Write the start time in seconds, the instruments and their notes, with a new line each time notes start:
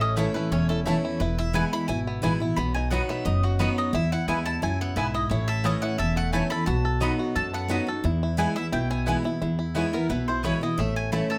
Already playing: upright bass A1, steel-string acoustic guitar A2, five-string banjo A3 E4 A4
0.01 five-string banjo C#4, mandolin D#5
0.16 steel-string acoustic guitar E3 A3 C#4 E4, mandolin A3 E4 C#5 A5, five-string banjo E4
0.34 five-string banjo A3, steel-string acoustic guitar C#4 E4, mandolin B4
0.51 upright bass E1, steel-string acoustic guitar E2, five-string banjo C#4, mandolin C#5
0.69 five-string banjo E4, mandolin A4
0.85 steel-string acoustic guitar E3 A3 C#4 E4, mandolin A3 E4 C#5 A5, five-string banjo A3
1.05 five-string banjo E4
1.20 upright bass E1, steel-string acoustic guitar E2, five-string banjo E4, mandolin B4
1.38 five-string banjo E4, mandolin E5
1.53 steel-string acoustic guitar E3 G#3 B3 E4, mandolin B3 E4 B4 G#5, five-string banjo E4
1.73 five-string banjo E4, mandolin B5
1.88 upright bass G#1, steel-string acoustic guitar B2, five-string banjo E4, mandolin G#5
2.07 five-string banjo B3
2.22 upright bass A1, steel-string acoustic guitar E3 G#3 B3 E4, mandolin B3 E4 B4 G#5, five-string banjo E4
2.40 steel-string acoustic guitar B3 E4, five-string banjo E4
2.56 upright bass B1, steel-string acoustic guitar B2, five-string banjo B3, mandolin B5
2.74 five-string banjo D#4, mandolin G#5
2.91 steel-string acoustic guitar F#3 B3 D#4 F#4, mandolin B3 F#4 D#5 F#5 B5, five-string banjo F#4
3.09 five-string banjo B3, mandolin E5
3.25 upright bass F#1, steel-string acoustic guitar F#2, five-string banjo D#4, mandolin D#5
3.43 mandolin F#4, five-string banjo F#4
3.59 steel-string acoustic guitar F#3 B3 D#4 F#4, mandolin B3 F#4 B4 D#5 B5, five-string banjo B3
3.78 five-string banjo F#4, mandolin D#5
3.93 steel-string acoustic guitar E2, upright bass E2, five-string banjo E4, mandolin E5
4.12 five-string banjo E4, mandolin F#5
4.28 upright bass D#2, steel-string acoustic guitar G#3 B3 E4, mandolin B3 E4 B4 G#5, five-string banjo E4
4.46 five-string banjo E4, mandolin A5
4.62 upright bass C#2, steel-string acoustic guitar F#2, five-string banjo E4, mandolin G#5
4.81 five-string banjo B3, mandolin F#5
4.96 upright bass B1, steel-string acoustic guitar G#2, mandolin B3 E4 B4 E5 G#5, five-string banjo E4
5.14 five-string banjo E4, mandolin D#5
5.30 upright bass A1, steel-string acoustic guitar A2, five-string banjo E4, mandolin C#5
5.48 five-string banjo A4, mandolin E5
5.64 steel-string acoustic guitar E3 A3 C#4 E4, mandolin A3 E4 C#5 D#5 A5, five-string banjo C#4
5.82 five-string banjo E4, mandolin F#5
5.98 upright bass E1, steel-string acoustic guitar E2, five-string banjo A4, mandolin E5
6.16 five-string banjo A3, mandolin F#5
6.33 steel-string acoustic guitar E3 A3 C#4 E4, mandolin A3 E4 C#5 G#5 A5, five-string banjo E4
6.50 steel-string acoustic guitar C#4 E4, five-string banjo A4, mandolin B5
6.66 upright bass B1, steel-string acoustic guitar B2, five-string banjo F#4, mandolin A5
6.85 five-string banjo A4
7.00 steel-string acoustic guitar F#3 B3 D#4 F#4, mandolin B3 F#4 D#5 B5, five-string banjo D#4
7.19 five-string banjo F#4
7.35 steel-string acoustic guitar F#2, upright bass F#2, five-string banjo A4, mandolin A5
7.53 five-string banjo B3, mandolin F#5
7.68 steel-string acoustic guitar F#3 B3 D#4 F#4, mandolin B3 F#4 D#5 B5, five-string banjo F#4
7.87 steel-string acoustic guitar D#4 F#4, five-string banjo A4
8.04 steel-string acoustic guitar E2, upright bass E2, five-string banjo E4
8.23 five-string banjo E4
8.37 steel-string acoustic guitar E3 G#3 B3 E4, mandolin B3 E4 B4 G#5, five-string banjo E4
8.56 steel-string acoustic guitar B3 E4, five-string banjo E4, mandolin E5
8.72 upright bass B1, steel-string acoustic guitar B2, five-string banjo E4, mandolin G5
8.90 five-string banjo B3, mandolin G#5
9.06 steel-string acoustic guitar E3 G#3 B3 E4, mandolin B3 E4 B4 G#5, five-string banjo E4
9.24 steel-string acoustic guitar B3 E4, five-string banjo E4
9.42 steel-string acoustic guitar E2, upright bass E2, five-string banjo E4
9.59 five-string banjo E4
9.75 steel-string acoustic guitar E3 G#3 B3 E4, mandolin B3 E4 B4 C#5 G#5, five-string banjo E4
9.93 five-string banjo B3, steel-string acoustic guitar B3 E4, mandolin A#4
10.09 upright bass B1, steel-string acoustic guitar B2, five-string banjo E4, mandolin B4
10.28 five-string banjo E4, mandolin C5
10.43 steel-string acoustic guitar E3 G#3 B3 E4, mandolin B3 E4 B4 C#5 G#5, five-string banjo E4
10.61 steel-string acoustic guitar B3 E4, five-string banjo E4, mandolin D#5
10.78 upright bass A1, steel-string acoustic guitar A2, five-string banjo A3, mandolin E5
10.96 mandolin G#5
11.12 steel-string acoustic guitar E3 A3 C#4 E4, mandolin A3 E4 C#5 A5 B5, five-string banjo A3
11.30 five-string banjo A4, mandolin A5